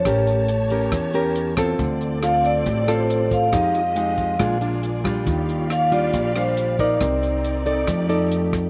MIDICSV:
0, 0, Header, 1, 6, 480
1, 0, Start_track
1, 0, Tempo, 434783
1, 55, Time_signature, 4, 2, 24, 8
1, 9603, End_track
2, 0, Start_track
2, 0, Title_t, "Vibraphone"
2, 0, Program_c, 0, 11
2, 0, Note_on_c, 0, 73, 83
2, 1228, Note_off_c, 0, 73, 0
2, 2468, Note_on_c, 0, 77, 105
2, 2685, Note_off_c, 0, 77, 0
2, 2714, Note_on_c, 0, 74, 98
2, 3198, Note_off_c, 0, 74, 0
2, 3200, Note_on_c, 0, 72, 81
2, 3678, Note_on_c, 0, 77, 92
2, 3681, Note_off_c, 0, 72, 0
2, 5062, Note_off_c, 0, 77, 0
2, 6312, Note_on_c, 0, 77, 101
2, 6527, Note_off_c, 0, 77, 0
2, 6550, Note_on_c, 0, 74, 93
2, 7025, Note_on_c, 0, 72, 86
2, 7036, Note_off_c, 0, 74, 0
2, 7467, Note_off_c, 0, 72, 0
2, 7505, Note_on_c, 0, 74, 82
2, 8896, Note_off_c, 0, 74, 0
2, 9603, End_track
3, 0, Start_track
3, 0, Title_t, "String section"
3, 0, Program_c, 1, 48
3, 0, Note_on_c, 1, 81, 61
3, 60, Note_on_c, 1, 67, 67
3, 60, Note_on_c, 1, 73, 81
3, 1937, Note_off_c, 1, 81, 0
3, 1958, Note_off_c, 1, 67, 0
3, 1958, Note_off_c, 1, 73, 0
3, 1975, Note_on_c, 1, 65, 71
3, 1981, Note_on_c, 1, 69, 69
3, 1981, Note_on_c, 1, 74, 86
3, 1982, Note_on_c, 1, 60, 76
3, 3878, Note_off_c, 1, 74, 0
3, 3879, Note_off_c, 1, 60, 0
3, 3879, Note_off_c, 1, 69, 0
3, 3907, Note_on_c, 1, 75, 75
3, 3909, Note_on_c, 1, 56, 69
3, 3910, Note_on_c, 1, 67, 60
3, 4851, Note_off_c, 1, 75, 0
3, 4852, Note_off_c, 1, 56, 0
3, 4852, Note_on_c, 1, 74, 70
3, 4853, Note_off_c, 1, 67, 0
3, 4855, Note_on_c, 1, 58, 64
3, 4861, Note_on_c, 1, 68, 59
3, 5804, Note_off_c, 1, 74, 0
3, 5805, Note_off_c, 1, 58, 0
3, 5808, Note_off_c, 1, 68, 0
3, 5819, Note_on_c, 1, 77, 83
3, 5822, Note_on_c, 1, 67, 68
3, 5823, Note_on_c, 1, 74, 72
3, 7691, Note_off_c, 1, 65, 0
3, 7718, Note_off_c, 1, 77, 0
3, 7720, Note_off_c, 1, 67, 0
3, 7720, Note_off_c, 1, 74, 0
3, 7732, Note_on_c, 1, 74, 83
3, 7733, Note_on_c, 1, 70, 63
3, 7735, Note_on_c, 1, 60, 69
3, 7736, Note_on_c, 1, 63, 73
3, 8676, Note_on_c, 1, 67, 63
3, 8684, Note_on_c, 1, 57, 66
3, 8685, Note_off_c, 1, 70, 0
3, 8686, Note_off_c, 1, 60, 0
3, 9603, Note_off_c, 1, 57, 0
3, 9603, Note_off_c, 1, 63, 0
3, 9603, Note_off_c, 1, 67, 0
3, 9603, Note_off_c, 1, 74, 0
3, 9603, End_track
4, 0, Start_track
4, 0, Title_t, "Nylon-string guitar"
4, 0, Program_c, 2, 24
4, 60, Note_on_c, 2, 57, 54
4, 62, Note_on_c, 2, 61, 53
4, 68, Note_on_c, 2, 67, 56
4, 72, Note_on_c, 2, 70, 62
4, 535, Note_off_c, 2, 61, 0
4, 539, Note_off_c, 2, 70, 0
4, 540, Note_off_c, 2, 67, 0
4, 785, Note_on_c, 2, 61, 60
4, 787, Note_on_c, 2, 67, 54
4, 792, Note_on_c, 2, 70, 65
4, 994, Note_off_c, 2, 57, 0
4, 1024, Note_on_c, 2, 52, 57
4, 1222, Note_off_c, 2, 61, 0
4, 1222, Note_off_c, 2, 67, 0
4, 1225, Note_off_c, 2, 70, 0
4, 1260, Note_on_c, 2, 61, 67
4, 1265, Note_on_c, 2, 67, 64
4, 1270, Note_on_c, 2, 70, 70
4, 1699, Note_off_c, 2, 61, 0
4, 1701, Note_off_c, 2, 67, 0
4, 1704, Note_off_c, 2, 70, 0
4, 1738, Note_on_c, 2, 60, 67
4, 1745, Note_on_c, 2, 65, 65
4, 1749, Note_on_c, 2, 69, 69
4, 1955, Note_off_c, 2, 52, 0
4, 1980, Note_on_c, 2, 50, 57
4, 2443, Note_off_c, 2, 60, 0
4, 2451, Note_off_c, 2, 65, 0
4, 2452, Note_off_c, 2, 69, 0
4, 2457, Note_on_c, 2, 60, 56
4, 2463, Note_on_c, 2, 65, 53
4, 2467, Note_on_c, 2, 69, 51
4, 2913, Note_off_c, 2, 50, 0
4, 2935, Note_on_c, 2, 45, 54
4, 3137, Note_off_c, 2, 60, 0
4, 3141, Note_off_c, 2, 65, 0
4, 3141, Note_off_c, 2, 69, 0
4, 3176, Note_on_c, 2, 60, 60
4, 3181, Note_on_c, 2, 65, 57
4, 3184, Note_on_c, 2, 69, 65
4, 3857, Note_off_c, 2, 60, 0
4, 3858, Note_off_c, 2, 65, 0
4, 3860, Note_off_c, 2, 69, 0
4, 3870, Note_off_c, 2, 45, 0
4, 3888, Note_on_c, 2, 53, 54
4, 3889, Note_on_c, 2, 56, 53
4, 3896, Note_on_c, 2, 63, 57
4, 3898, Note_on_c, 2, 67, 60
4, 4201, Note_off_c, 2, 56, 0
4, 4202, Note_off_c, 2, 63, 0
4, 4205, Note_off_c, 2, 67, 0
4, 4370, Note_on_c, 2, 56, 50
4, 4378, Note_on_c, 2, 63, 52
4, 4384, Note_on_c, 2, 67, 56
4, 4828, Note_off_c, 2, 53, 0
4, 4833, Note_off_c, 2, 56, 0
4, 4835, Note_off_c, 2, 63, 0
4, 4840, Note_off_c, 2, 67, 0
4, 4848, Note_on_c, 2, 46, 54
4, 4851, Note_on_c, 2, 56, 55
4, 4856, Note_on_c, 2, 62, 57
4, 4858, Note_on_c, 2, 65, 60
4, 5054, Note_off_c, 2, 56, 0
4, 5055, Note_off_c, 2, 62, 0
4, 5058, Note_off_c, 2, 65, 0
4, 5088, Note_on_c, 2, 56, 55
4, 5096, Note_on_c, 2, 62, 57
4, 5098, Note_on_c, 2, 65, 59
4, 5533, Note_off_c, 2, 56, 0
4, 5536, Note_off_c, 2, 65, 0
4, 5537, Note_off_c, 2, 62, 0
4, 5565, Note_on_c, 2, 55, 65
4, 5571, Note_on_c, 2, 62, 62
4, 5575, Note_on_c, 2, 65, 69
4, 5788, Note_off_c, 2, 46, 0
4, 5801, Note_on_c, 2, 51, 52
4, 6252, Note_off_c, 2, 55, 0
4, 6253, Note_off_c, 2, 62, 0
4, 6257, Note_off_c, 2, 65, 0
4, 6529, Note_on_c, 2, 55, 59
4, 6536, Note_on_c, 2, 62, 61
4, 6538, Note_on_c, 2, 65, 66
4, 6744, Note_off_c, 2, 51, 0
4, 6774, Note_on_c, 2, 46, 59
4, 6974, Note_off_c, 2, 55, 0
4, 6976, Note_off_c, 2, 62, 0
4, 6978, Note_off_c, 2, 65, 0
4, 7016, Note_on_c, 2, 55, 62
4, 7023, Note_on_c, 2, 62, 60
4, 7027, Note_on_c, 2, 65, 61
4, 7458, Note_off_c, 2, 55, 0
4, 7460, Note_off_c, 2, 62, 0
4, 7463, Note_off_c, 2, 65, 0
4, 7500, Note_on_c, 2, 63, 61
4, 7506, Note_on_c, 2, 70, 65
4, 7510, Note_on_c, 2, 74, 72
4, 7711, Note_off_c, 2, 46, 0
4, 7736, Note_on_c, 2, 60, 52
4, 8420, Note_off_c, 2, 63, 0
4, 8422, Note_off_c, 2, 70, 0
4, 8425, Note_off_c, 2, 74, 0
4, 8455, Note_on_c, 2, 63, 63
4, 8459, Note_on_c, 2, 69, 61
4, 8465, Note_on_c, 2, 74, 61
4, 8672, Note_off_c, 2, 60, 0
4, 8685, Note_on_c, 2, 53, 59
4, 8897, Note_off_c, 2, 63, 0
4, 8899, Note_off_c, 2, 69, 0
4, 8901, Note_off_c, 2, 74, 0
4, 8929, Note_on_c, 2, 63, 58
4, 8935, Note_on_c, 2, 69, 57
4, 8940, Note_on_c, 2, 74, 68
4, 9603, Note_off_c, 2, 53, 0
4, 9603, Note_off_c, 2, 63, 0
4, 9603, Note_off_c, 2, 69, 0
4, 9603, Note_off_c, 2, 74, 0
4, 9603, End_track
5, 0, Start_track
5, 0, Title_t, "Upright bass"
5, 0, Program_c, 3, 32
5, 54, Note_on_c, 3, 33, 91
5, 970, Note_off_c, 3, 33, 0
5, 1014, Note_on_c, 3, 40, 90
5, 1930, Note_off_c, 3, 40, 0
5, 1976, Note_on_c, 3, 38, 92
5, 2891, Note_off_c, 3, 38, 0
5, 2940, Note_on_c, 3, 33, 93
5, 3853, Note_off_c, 3, 33, 0
5, 3899, Note_on_c, 3, 41, 90
5, 4812, Note_off_c, 3, 41, 0
5, 4856, Note_on_c, 3, 34, 89
5, 5771, Note_off_c, 3, 34, 0
5, 5816, Note_on_c, 3, 39, 87
5, 6732, Note_off_c, 3, 39, 0
5, 6776, Note_on_c, 3, 34, 95
5, 7691, Note_off_c, 3, 34, 0
5, 7737, Note_on_c, 3, 36, 88
5, 8653, Note_off_c, 3, 36, 0
5, 8693, Note_on_c, 3, 41, 92
5, 9603, Note_off_c, 3, 41, 0
5, 9603, End_track
6, 0, Start_track
6, 0, Title_t, "Drums"
6, 56, Note_on_c, 9, 36, 58
6, 59, Note_on_c, 9, 37, 59
6, 59, Note_on_c, 9, 42, 41
6, 166, Note_off_c, 9, 36, 0
6, 169, Note_off_c, 9, 37, 0
6, 169, Note_off_c, 9, 42, 0
6, 301, Note_on_c, 9, 42, 26
6, 411, Note_off_c, 9, 42, 0
6, 533, Note_on_c, 9, 42, 43
6, 644, Note_off_c, 9, 42, 0
6, 774, Note_on_c, 9, 42, 25
6, 885, Note_off_c, 9, 42, 0
6, 1015, Note_on_c, 9, 36, 61
6, 1015, Note_on_c, 9, 37, 58
6, 1015, Note_on_c, 9, 42, 40
6, 1125, Note_off_c, 9, 37, 0
6, 1125, Note_off_c, 9, 42, 0
6, 1126, Note_off_c, 9, 36, 0
6, 1254, Note_on_c, 9, 42, 24
6, 1364, Note_off_c, 9, 42, 0
6, 1495, Note_on_c, 9, 42, 41
6, 1606, Note_off_c, 9, 42, 0
6, 1733, Note_on_c, 9, 37, 65
6, 1733, Note_on_c, 9, 42, 29
6, 1736, Note_on_c, 9, 36, 59
6, 1843, Note_off_c, 9, 37, 0
6, 1843, Note_off_c, 9, 42, 0
6, 1846, Note_off_c, 9, 36, 0
6, 1977, Note_on_c, 9, 36, 54
6, 1977, Note_on_c, 9, 42, 40
6, 2088, Note_off_c, 9, 36, 0
6, 2088, Note_off_c, 9, 42, 0
6, 2218, Note_on_c, 9, 42, 25
6, 2328, Note_off_c, 9, 42, 0
6, 2457, Note_on_c, 9, 37, 60
6, 2457, Note_on_c, 9, 42, 42
6, 2567, Note_off_c, 9, 37, 0
6, 2567, Note_off_c, 9, 42, 0
6, 2698, Note_on_c, 9, 42, 27
6, 2809, Note_off_c, 9, 42, 0
6, 2938, Note_on_c, 9, 42, 43
6, 2940, Note_on_c, 9, 36, 55
6, 3048, Note_off_c, 9, 42, 0
6, 3050, Note_off_c, 9, 36, 0
6, 3181, Note_on_c, 9, 37, 60
6, 3181, Note_on_c, 9, 42, 27
6, 3292, Note_off_c, 9, 37, 0
6, 3292, Note_off_c, 9, 42, 0
6, 3424, Note_on_c, 9, 42, 43
6, 3534, Note_off_c, 9, 42, 0
6, 3658, Note_on_c, 9, 36, 64
6, 3659, Note_on_c, 9, 42, 33
6, 3769, Note_off_c, 9, 36, 0
6, 3769, Note_off_c, 9, 42, 0
6, 3894, Note_on_c, 9, 37, 60
6, 3894, Note_on_c, 9, 42, 43
6, 3897, Note_on_c, 9, 36, 60
6, 4004, Note_off_c, 9, 37, 0
6, 4004, Note_off_c, 9, 42, 0
6, 4007, Note_off_c, 9, 36, 0
6, 4138, Note_on_c, 9, 42, 28
6, 4248, Note_off_c, 9, 42, 0
6, 4372, Note_on_c, 9, 42, 43
6, 4483, Note_off_c, 9, 42, 0
6, 4612, Note_on_c, 9, 42, 28
6, 4614, Note_on_c, 9, 36, 54
6, 4722, Note_off_c, 9, 42, 0
6, 4724, Note_off_c, 9, 36, 0
6, 4852, Note_on_c, 9, 37, 61
6, 4852, Note_on_c, 9, 42, 38
6, 4855, Note_on_c, 9, 36, 53
6, 4962, Note_off_c, 9, 37, 0
6, 4962, Note_off_c, 9, 42, 0
6, 4965, Note_off_c, 9, 36, 0
6, 5091, Note_on_c, 9, 42, 27
6, 5201, Note_off_c, 9, 42, 0
6, 5335, Note_on_c, 9, 42, 40
6, 5445, Note_off_c, 9, 42, 0
6, 5576, Note_on_c, 9, 36, 62
6, 5576, Note_on_c, 9, 37, 62
6, 5576, Note_on_c, 9, 42, 28
6, 5686, Note_off_c, 9, 36, 0
6, 5686, Note_off_c, 9, 37, 0
6, 5686, Note_off_c, 9, 42, 0
6, 5813, Note_on_c, 9, 42, 42
6, 5815, Note_on_c, 9, 36, 63
6, 5924, Note_off_c, 9, 42, 0
6, 5926, Note_off_c, 9, 36, 0
6, 6060, Note_on_c, 9, 42, 26
6, 6170, Note_off_c, 9, 42, 0
6, 6296, Note_on_c, 9, 37, 64
6, 6296, Note_on_c, 9, 42, 41
6, 6406, Note_off_c, 9, 37, 0
6, 6406, Note_off_c, 9, 42, 0
6, 6534, Note_on_c, 9, 42, 27
6, 6645, Note_off_c, 9, 42, 0
6, 6773, Note_on_c, 9, 42, 44
6, 6775, Note_on_c, 9, 36, 54
6, 6884, Note_off_c, 9, 42, 0
6, 6886, Note_off_c, 9, 36, 0
6, 7017, Note_on_c, 9, 37, 57
6, 7017, Note_on_c, 9, 42, 29
6, 7127, Note_off_c, 9, 37, 0
6, 7127, Note_off_c, 9, 42, 0
6, 7255, Note_on_c, 9, 42, 47
6, 7366, Note_off_c, 9, 42, 0
6, 7496, Note_on_c, 9, 36, 58
6, 7500, Note_on_c, 9, 42, 32
6, 7607, Note_off_c, 9, 36, 0
6, 7610, Note_off_c, 9, 42, 0
6, 7735, Note_on_c, 9, 37, 59
6, 7735, Note_on_c, 9, 42, 44
6, 7736, Note_on_c, 9, 36, 55
6, 7845, Note_off_c, 9, 37, 0
6, 7845, Note_off_c, 9, 42, 0
6, 7847, Note_off_c, 9, 36, 0
6, 7981, Note_on_c, 9, 42, 26
6, 8092, Note_off_c, 9, 42, 0
6, 8218, Note_on_c, 9, 42, 43
6, 8328, Note_off_c, 9, 42, 0
6, 8457, Note_on_c, 9, 42, 28
6, 8567, Note_off_c, 9, 42, 0
6, 8694, Note_on_c, 9, 37, 61
6, 8694, Note_on_c, 9, 42, 44
6, 8695, Note_on_c, 9, 36, 53
6, 8804, Note_off_c, 9, 37, 0
6, 8804, Note_off_c, 9, 42, 0
6, 8805, Note_off_c, 9, 36, 0
6, 8937, Note_on_c, 9, 42, 26
6, 9048, Note_off_c, 9, 42, 0
6, 9180, Note_on_c, 9, 42, 44
6, 9290, Note_off_c, 9, 42, 0
6, 9417, Note_on_c, 9, 36, 58
6, 9419, Note_on_c, 9, 37, 62
6, 9419, Note_on_c, 9, 42, 29
6, 9528, Note_off_c, 9, 36, 0
6, 9529, Note_off_c, 9, 37, 0
6, 9529, Note_off_c, 9, 42, 0
6, 9603, End_track
0, 0, End_of_file